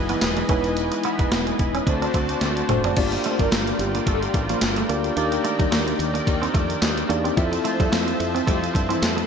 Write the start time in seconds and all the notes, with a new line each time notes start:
Already playing: F#1 E3 G#3 B3 D#4 E4 B4 D#5 G#5
0.09 E3 B3 E4, closed hi-hat
0.20 E1 E3 B3 E4, muted clean electric guitar stroke, snare, closed hi-hat, tambourine
0.37 G#3, closed hi-hat
0.48 E1 E3 G#3 B3 C#4 D#4 E4 B4, kick, closed hi-hat
0.64 closed hi-hat
0.77 closed hi-hat
0.92 muted clean electric guitar stroke, closed hi-hat
1.03 B3 E4, closed hi-hat
1.19 E1 G#3, kick, closed hi-hat
1.32 E1 B3, snare, closed hi-hat, tambourine
1.47 muted clean electric guitar stroke, closed hi-hat
1.59 E1, kick, closed hi-hat
1.75 C#4, closed hi-hat
1.86 D2 D3 A3 C4 D4 F#4 C5 D5 A5, muted clean electric guitar stroke, kick, closed hi-hat
2.02 D4, closed hi-hat
2.14 D2 A3, kick, closed hi-hat
2.29 closed hi-hat
2.41 D2 D3 A3 D4, muted clean electric guitar stroke, snare, closed hi-hat
2.57 closed hi-hat
2.69 F#1 A3 C4 D4 F#4 C5, closed hi-hat, mid tom
2.84 D4, closed hi-hat, floor tom
2.95 G1 G2 D3 A#3 D4 F4 G4 A#4 D5 G5, kick, closed hi-hat, crash
3.00 G3
3.12 muted clean electric guitar stroke, closed hi-hat
3.24 A3 C4 C5, closed hi-hat
3.39 G1 G3 A#3 A#4, kick, closed hi-hat
3.51 G1 A3, snare, closed hi-hat, tambourine
3.67 muted clean electric guitar stroke, closed hi-hat
3.79 G1 G3 G4, closed hi-hat
3.95 A#3, closed hi-hat
4.06 G1 G2 D3 G3 A3 A4, kick, closed hi-hat
4.22 G3 G4, closed hi-hat
4.34 A1, muted clean electric guitar stroke, kick, closed hi-hat
4.49 F3 A#3 F4, closed hi-hat
4.61 G1 G2 D3 G3, muted clean electric guitar stroke, snare, closed hi-hat, tambourine
4.76 A3, closed hi-hat
4.89 D2 A#3 D4 F4 G4 D5, closed hi-hat
5.04 closed hi-hat
5.16 D#2 D#3 A#3 D4 D#4 G4 D5, closed hi-hat
5.32 muted clean electric guitar stroke, closed hi-hat
5.43 A3 A#3 D#4, closed hi-hat
5.59 D#2 G3, kick, closed hi-hat
5.71 D#2 A3, snare, closed hi-hat, tambourine
5.87 muted clean electric guitar stroke, closed hi-hat
5.99 D#2, closed hi-hat
6.14 A#3, closed hi-hat
6.26 D#2 D#3 A#3 D#4, muted clean electric guitar stroke, kick, closed hi-hat
6.42 C4, closed hi-hat
6.54 F2 A3, kick, closed hi-hat
6.70 closed hi-hat
6.80 D#2 D#3 A#3 D#4, muted clean electric guitar stroke, snare, closed hi-hat, tambourine
6.98 closed hi-hat
7.09 E2 A#3 D4 D#4 G4 D5, closed hi-hat
7.24 C4, closed hi-hat
7.36 F2 F3 C4 E4 F4 A4 C5 E5 A5, kick, closed hi-hat
7.52 muted clean electric guitar stroke, closed hi-hat
7.64 A3 C4 F4 C5, closed hi-hat
7.80 F2 G3 A3 A4, kick, closed hi-hat
7.92 F2 A3, snare, closed hi-hat, tambourine
8.08 muted clean electric guitar stroke, closed hi-hat
8.20 F2 F3 F4, closed hi-hat
8.35 C4, closed hi-hat
8.46 F2 F3 G3 A3 C4 F4 G4, kick, closed hi-hat
8.62 F3 F4, closed hi-hat
8.74 G2, muted clean electric guitar stroke, kick, closed hi-hat
8.89 E3 C4 E4, closed hi-hat
9.01 F2 F3 C4 F4, muted clean electric guitar stroke, snare, closed hi-hat, tambourine
9.17 A3, closed hi-hat